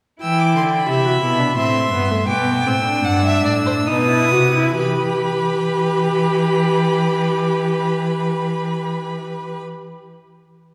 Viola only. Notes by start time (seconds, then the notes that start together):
0.21 E4
0.88 G4
1.05 F#4
1.23 E4
1.39 D4
1.57 C4
1.93 B3
2.10 A3
2.28 B3
2.66 C4
2.85 D4
3.87 D#4
4.08 E4
4.31 F#4
4.54 E4
4.78 G4